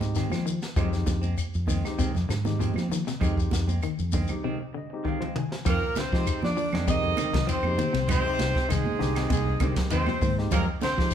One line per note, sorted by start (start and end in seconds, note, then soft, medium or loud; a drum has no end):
0.00 0.24 G#2 medium
0.00 0.33 G#3 medium
0.00 0.33 C4 medium
0.00 0.33 D#4 medium
0.00 0.33 G4 medium
0.00 muted clean electric guitar stroke soft
0.00 snare soft
0.00 closed hi-hat soft
0.00 high conga medium
0.00 shekere soft
0.15 0.32 D#3 medium
0.15 0.26 D#3 medium
0.15 0.32 G#3 medium
0.15 0.31 C4 medium
0.15 snare soft
0.15 closed hi-hat medium
0.15 shekere medium
0.30 0.40 F3 medium
0.30 0.58 F3 medium
0.30 0.47 G#3 soft
0.30 0.47 C4 medium
0.30 snare soft
0.30 high conga medium
0.30 claves medium
0.30 shekere soft
0.46 0.64 D#3 medium
0.46 muted clean electric guitar stroke soft
0.46 closed hi-hat medium
0.46 shekere medium
0.62 muted clean electric guitar stroke medium
0.62 snare medium
0.62 shekere soft
0.76 1.03 F2 medium
0.76 0.93 D#3 medium
0.76 0.95 F3 medium
0.76 1.22 G#3 medium
0.76 0.91 G#3 medium
0.76 0.90 C4 medium
0.76 1.23 C4 medium
0.76 1.23 D#4 medium
0.76 1.23 G4 medium
0.76 kick medium
0.76 closed hi-hat medium
0.76 low conga medium
0.76 claves medium
0.76 shekere medium
0.92 muted clean electric guitar stroke soft
0.92 snare soft
0.92 shekere soft
1.06 1.33 F2 medium
1.06 1.25 D3 medium
1.06 muted clean electric guitar stroke soft
1.06 kick medium
1.06 snare medium
1.06 closed hi-hat soft
1.06 high conga medium
1.06 shekere medium
1.22 1.36 G#3 soft
1.22 1.36 C4 medium
1.22 closed hi-hat soft
1.22 high conga medium
1.22 shekere soft
1.37 muted clean electric guitar stroke soft
1.37 closed hi-hat medium
1.37 claves medium
1.37 shekere medium
1.54 1.81 F2 medium
1.54 shekere soft
1.67 1.87 D#3 medium
1.67 1.86 D#3 medium
1.67 1.88 G#3 medium
1.67 1.88 C4 medium
1.67 kick medium
1.67 open hi-hat medium
1.67 high conga medium
1.67 shekere medium
1.85 2.11 G#3 medium
1.85 2.11 C4 medium
1.85 2.10 D#4 medium
1.85 2.11 G4 medium
1.85 snare soft
1.85 claves medium
1.85 shekere soft
1.98 2.17 C3 medium
1.98 2.15 D#3 medium
1.98 2.14 G#3 medium
1.98 2.13 C4 medium
1.98 kick medium
1.98 closed hi-hat medium
1.98 shekere medium
2.14 2.28 F2 medium
2.14 muted clean electric guitar stroke soft
2.14 snare soft
2.14 low conga medium
2.14 shekere soft
2.29 2.70 G#2 medium
2.29 2.39 D3 medium
2.29 muted clean electric guitar stroke soft
2.29 snare medium
2.29 closed hi-hat soft
2.29 claves medium
2.29 shekere medium
2.45 2.54 D#3 medium
2.45 2.78 G#3 medium
2.45 2.79 C4 medium
2.45 2.79 D#4 medium
2.45 2.79 G4 medium
2.45 muted clean electric guitar stroke soft
2.45 snare soft
2.45 high conga medium
2.45 shekere soft
2.59 2.76 D#3 medium
2.59 2.78 F3 medium
2.59 2.76 G#3 medium
2.59 2.74 C4 medium
2.59 closed hi-hat medium
2.59 high conga medium
2.59 shekere medium
2.74 3.03 F3 medium
2.74 2.89 C4 medium
2.74 snare soft
2.74 closed hi-hat soft
2.74 high conga medium
2.74 claves medium
2.78 shekere soft
2.89 3.01 D#3 medium
2.89 muted clean electric guitar stroke soft
2.89 snare soft
2.89 closed hi-hat medium
2.89 high conga medium
2.89 shekere medium
3.05 3.25 C3 medium
3.05 muted clean electric guitar stroke soft
3.05 snare medium
3.05 shekere soft
3.20 3.48 F2 medium
3.20 3.37 D#3 medium
3.20 3.37 G#3 medium
3.20 3.68 G#3 medium
3.20 3.36 C4 medium
3.20 3.67 C4 medium
3.20 3.67 D#4 medium
3.20 3.68 G4 medium
3.20 kick medium
3.20 closed hi-hat medium
3.20 low conga medium
3.20 claves medium
3.20 shekere medium
3.37 muted clean electric guitar stroke soft
3.37 kick medium
3.37 shekere soft
3.51 3.78 F2 medium
3.51 muted clean electric guitar stroke soft
3.51 kick medium
3.51 snare medium
3.51 closed hi-hat medium
3.51 high conga medium
3.51 shekere medium
3.67 3.82 G#3 soft
3.67 3.82 C4 medium
3.67 closed hi-hat soft
3.67 high conga medium
3.67 shekere soft
3.82 4.01 D#3 medium
3.82 muted clean electric guitar stroke soft
3.82 closed hi-hat medium
3.82 claves medium
3.82 shekere medium
3.99 4.25 F2 medium
3.99 closed hi-hat soft
3.99 shekere soft
4.12 4.32 D3 medium
4.12 4.33 D#3 medium
4.12 4.33 G#3 medium
4.12 4.33 C4 medium
4.12 kick medium
4.12 open hi-hat medium
4.12 high conga medium
4.12 shekere medium
4.28 4.55 G#3 medium
4.28 4.55 C4 medium
4.28 4.55 D#4 medium
4.28 4.56 G4 medium
4.28 closed hi-hat soft
4.28 low conga medium
4.28 claves medium
4.28 shekere soft
4.44 4.62 C3 medium
4.44 4.60 D#3 medium
4.44 4.60 G#3 medium
4.44 4.59 C4 medium
4.60 muted clean electric guitar stroke soft
4.73 4.92 D3 medium
4.73 5.05 D#5 medium
4.73 muted clean electric guitar stroke soft
4.90 5.24 G#3 medium
4.90 5.24 C4 medium
4.90 5.24 D#4 medium
4.90 5.24 G4 medium
4.90 muted clean electric guitar stroke soft
5.04 5.21 D#3 medium
5.04 5.15 D#3 medium
5.04 5.21 G#3 medium
5.04 5.20 C4 medium
5.04 5.35 F5 medium
5.04 kick soft
5.21 5.29 F3 medium
5.21 5.35 G#3 soft
5.21 5.36 C4 medium
5.21 mid tom soft
5.36 5.54 D#3 medium
5.36 5.66 G#5 medium
5.36 muted clean electric guitar stroke soft
5.36 mid tom medium
5.51 muted clean electric guitar stroke soft
5.51 snare medium
5.65 5.80 F2 medium
5.65 5.95 A#2 medium
5.65 5.82 D#3 medium
5.65 5.83 F3 medium
5.65 5.98 A#3 medium
5.65 5.80 C4 loud
5.65 5.96 A#4 loud
5.65 muted clean electric guitar stroke medium
5.65 kick loud
5.65 ride bell medium
5.65 low conga medium
5.65 claves medium
5.65 shekere medium
5.82 muted clean electric guitar stroke soft
5.95 6.44 C3 medium
5.95 6.15 D3 medium
5.95 6.43 C4 medium
5.95 6.44 C5 loud
5.95 muted fingered electric bass stroke soft
5.95 snare medium
5.95 ride bell medium
5.95 high conga loud
5.95 shekere soft
6.12 6.25 F3 medium
6.12 6.27 G#3 soft
6.12 6.45 G#3 medium
6.12 6.27 C4 medium
6.12 6.45 C4 medium
6.12 6.46 D#4 medium
6.12 6.45 G4 medium
6.12 kick medium
6.12 snare soft
6.27 muted clean electric guitar stroke soft
6.27 ride bell soft
6.27 claves medium
6.27 shekere loud
6.42 6.85 D3 medium
6.42 6.56 F3 loud
6.42 6.86 D4 medium
6.42 6.85 D5 medium
6.42 muted clean electric guitar stroke soft
6.42 snare soft
6.42 high conga medium
6.57 6.75 F3 medium
6.57 muted clean electric guitar stroke soft
6.57 open hi-hat medium
6.57 shekere soft
6.73 6.99 F2 medium
6.73 6.92 D#3 medium
6.73 6.92 G#3 medium
6.73 6.91 C4 medium
6.73 snare medium
6.73 high conga medium
6.73 low conga medium
6.73 claves medium
6.87 7.06 C3 loud
6.87 7.45 D#3 medium
6.87 7.20 G#3 medium
6.87 7.20 C4 medium
6.87 7.45 D#4 medium
6.87 7.20 D#4 medium
6.87 7.20 G4 loud
6.87 7.46 D#5 loud
6.87 kick medium
6.87 ride bell medium
6.87 shekere loud
7.03 7.16 F2 medium
7.03 muted clean electric guitar stroke soft
7.17 7.28 D3 medium
7.17 7.34 D#3 medium
7.17 7.32 G#3 medium
7.17 7.31 C4 medium
7.17 muted fingered electric bass stroke soft
7.17 snare soft
7.17 ride bell medium
7.17 high conga medium
7.17 claves medium
7.17 shekere soft
7.33 7.46 C2 medium
7.33 7.42 D#3 medium
7.33 muted clean electric guitar stroke soft
7.33 kick medium
7.33 snare medium
7.33 ride bell medium
7.33 low conga medium
7.46 8.06 C3 medium
7.46 7.67 D#3 medium
7.46 7.65 F3 medium
7.46 7.67 C4 medium
7.46 8.06 C4 medium
7.46 muted clean electric guitar stroke medium
7.46 muted fingered electric bass stroke soft
7.46 ride bell medium
7.46 shekere medium
7.51 8.07 C5 medium
7.63 7.76 F2 medium
7.63 7.91 G#3 medium
7.63 7.91 C4 medium
7.63 high conga medium
7.63 claves medium
7.67 7.91 D#4 medium
7.67 7.91 G4 medium
7.78 7.88 D#3 medium
7.78 ride bell medium
7.78 high conga medium
7.78 shekere soft
7.93 8.20 C2 medium
7.93 8.12 C3 medium
7.93 muted clean electric guitar stroke soft
7.93 snare soft
7.93 ride bell medium
8.08 8.66 C3 medium
8.08 8.25 D#3 medium
8.08 8.24 G#3 loud
8.08 8.23 C4 medium
8.08 8.67 C4 loud
8.08 8.67 C5 loud
8.08 kick medium
8.08 ride bell medium
8.08 low conga medium
8.08 claves medium
8.08 shekere medium
8.25 8.57 G#3 medium
8.25 8.57 C4 medium
8.25 8.57 D#4 medium
8.25 8.58 G4 medium
8.25 muted clean electric guitar stroke soft
8.39 8.54 C2 medium
8.39 snare medium
8.39 ride bell medium
8.39 high conga loud
8.39 shekere soft
8.55 8.69 G#3 medium
8.55 8.70 C4 medium
8.55 kick medium
8.55 snare soft
8.69 8.84 C2 loud
8.69 9.27 G#2 medium
8.69 8.87 D#3 medium
8.69 9.27 G#3 medium
8.69 9.27 G#4 medium
8.69 muted clean electric guitar stroke soft
8.69 snare soft
8.69 ride bell medium
8.69 claves medium
8.69 shekere loud
8.85 muted clean electric guitar stroke medium
8.85 high conga medium
8.99 9.27 C2 medium
8.99 9.18 D3 medium
8.99 9.26 G#3 loud
8.99 9.26 C4 medium
8.99 9.26 D#4 medium
8.99 9.26 G4 loud
8.99 muted clean electric guitar stroke soft
8.99 snare soft
8.99 open hi-hat medium
9.03 shekere soft
9.16 9.35 D#3 medium
9.16 9.34 G#3 medium
9.16 9.34 C4 medium
9.16 snare medium
9.16 ride bell medium
9.16 claves medium
9.28 9.56 C2 loud
9.28 9.63 G#2 medium
9.28 9.48 C3 medium
9.28 9.61 G#3 medium
9.28 9.63 G#4 medium
9.28 kick medium
9.28 ride bell medium
9.28 high conga medium
9.28 shekere loud
9.47 muted clean electric guitar stroke medium
9.60 9.74 C2 loud
9.60 9.79 D3 medium
9.60 9.78 D#3 medium
9.60 9.94 D#3 medium
9.60 9.93 G#3 medium
9.60 9.77 G#3 medium
9.60 9.93 C4 medium
9.60 9.76 C4 medium
9.60 9.94 G4 medium
9.60 kick medium
9.60 ride bell medium
9.60 high conga medium
9.60 claves medium
9.60 shekere soft
9.76 muted clean electric guitar stroke soft
9.76 kick medium
9.76 snare medium
9.76 ride bell medium
9.76 low conga medium
9.90 10.06 D#2 medium
9.90 10.34 C3 medium
9.90 10.01 D#3 medium
9.90 10.11 D#3 medium
9.90 10.11 G#3 medium
9.90 10.34 C4 medium
9.90 10.11 C4 medium
9.90 10.35 C5 loud
9.90 ride bell medium
9.90 shekere medium
10.06 10.17 F3 medium
10.06 snare soft
10.06 high conga medium
10.06 claves medium
10.21 10.48 G#2 loud
10.21 10.40 D#3 medium
10.21 muted clean electric guitar stroke soft
10.21 kick medium
10.21 open hi-hat medium
10.21 high conga medium
10.21 shekere soft
10.38 10.63 G#3 medium
10.38 10.63 C4 medium
10.38 10.64 D#4 medium
10.38 10.64 G4 medium
10.38 muted clean electric guitar stroke soft
10.38 snare soft
10.51 10.65 F2 medium
10.51 10.65 A#2 medium
10.51 10.69 D#3 medium
10.51 10.70 F3 medium
10.51 10.68 G#3 loud
10.51 10.66 A#3 medium
10.51 10.67 C4 loud
10.51 10.66 A#4 loud
10.51 kick loud
10.51 ride bell medium
10.51 low conga loud
10.51 claves medium
10.51 shekere medium
10.68 muted clean electric guitar stroke medium
10.81 11.14 C3 medium
10.81 11.00 D3 medium
10.81 11.14 C4 medium
10.81 11.14 C5 loud
10.81 muted fingered electric bass stroke soft
10.81 snare medium
10.81 ride bell soft
10.81 high conga medium
10.81 shekere soft
10.98 11.10 F3 medium
10.98 11.14 G#3 medium
10.98 11.11 G#3 soft
10.98 11.12 C4 medium
10.98 11.14 C4 medium
10.98 11.14 D#4 medium
10.98 11.14 G4 medium
10.98 kick medium
10.98 snare soft
11.11 shekere loud